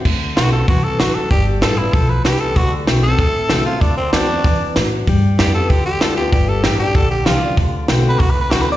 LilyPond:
<<
  \new Staff \with { instrumentName = "Tenor saxophone" } { \time 4/4 \key d \mixolydian \tempo 4 = 192 r4 fis'8 a'8 fis'8 a'8 fis'8 a'8 | g'8 r8 a'8 e'8 a'8 b'8 g'8 a'8 | fis'8 r4 a'2 f'8 | d'8 c'8 d'2 r4 |
r4 g'8 a'8 g'8 g'8 a'8 g'8 | g'8 a'8 g'8 g'8 a'8 g'8 f'4 | r4 \tuplet 3/2 { r4 b'8 fis'8 b'8 b'8 fis'8 b'8 d''8 } | }
  \new Staff \with { instrumentName = "Steel-string acoustic guitar" } { \time 4/4 \key d \mixolydian << { r4 <d a c' fis'>8 <c' fis'>8 r2 | r4 <g b f'>8 <b f'>8 r2 | r4 <d a c' fis'>8 <c' fis'>8 r4 <d a c' fis'>8 <c' fis'>8 | r4 <d a c' fis'>8 <c' fis'>8 r2 |
r4 <g b f'>8 <b f'>8 r4 <g b f'>8 <b f'>8 | r4 <f bes d' g'>8 <d' g'>8 r4 <f bes d' g'>8 <d' g'>8 | r4 <d a c' fis'>4 r4 <d a c' fis'>8 <c' fis'>8 | } \\ { d2 e4 fis4 | g2 f4 e4 | d2 a,2 | d2 e4 fis4 |
g2 d2 | g,2 d2 | d2 a,2 | } >> }
  \new Staff \with { instrumentName = "Upright bass" } { \clef bass \time 4/4 \key d \mixolydian d,4 b,,4 c,4 a,,8 r8 | g,,4 a,,4 b,,4 c,4 | d,4 b,,4 a,,8 r8 c,4 | d,4 e,4 fis,8 r8 a,4 |
g,4 f,4 e,4 d,4 | g,,4 a,,4 bes,,4 c,4 | d,4 b,,4 c,4 d,4 | }
  \new DrumStaff \with { instrumentName = "Drums" } \drummode { \time 4/4 <cymc bd>4 <hho sn>4 <hho bd>4 <hho sn>4 | <hho bd>4 <hho sn>4 <hho bd>4 <hho sn>4 | <hho bd>4 <hho sn>4 <hho bd>4 <hho sn>4 | <hho bd>4 <hho sn>4 <hho bd>4 <hho sn>4 |
<hho bd>4 <hho sn>4 <hho bd>4 <hho sn>4 | <hho bd>4 <hho sn>4 <hho bd>4 <hho sn>4 | <hho bd>4 <hho sn>4 <hho bd>4 <hho sn>4 | }
>>